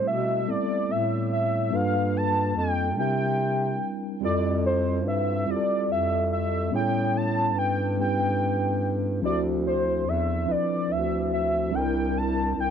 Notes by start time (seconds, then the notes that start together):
Already playing: G3 A3 C4 E4 A4
0.07 B2 E5
0.45 A2 G3 B3 C4 E4 A4
0.50 D5
0.90 A2 E5
1.33 E5
1.70 G2 G3 A#3 D4 F4 A4
1.75 F5
2.17 A5
2.56 F2 G5
2.97 C3 G3 C4 D4 E4 A#4 G5
4.21 F2 G3 C4 E4 F4 A4 D5
4.66 C5
5.06 G2 E5
5.46 F2 G3 C4 E4 F4 G4
5.50 D5
5.56 A4
5.89 F2 E5
6.33 E5
6.71 A2 G3 B3 C#4 E4 G#4
6.76 G5
6.80 A4
7.17 A5
7.55 G2 G5
7.98 G3 B3 C#4 E4 G4 G5
9.22 D2 F3 C4 D4 E4 G4 D5
9.31 A4
9.67 C5
10.07 E2 E5
10.46 D2 F3 C4 D4 E4 B4
10.51 D5
10.90 D2 E5
11.33 E5
11.71 C2 G3 C4 D4 E4 A4
11.75 G5
11.81 A#4
12.18 A5
12.56 C2
12.60 G5